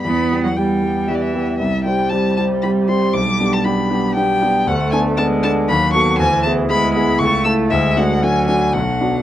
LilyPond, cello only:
\new Staff \with { instrumentName = "Cello" } { \clef bass \time 3/4 \key g \major \tempo 4 = 117 b8. fis16 g4 e4 | g2.~ | g2. | \key d \lydian a4 gis4 fis4 |
e4 gis4 a4 | gis4 fis4 fis4 | }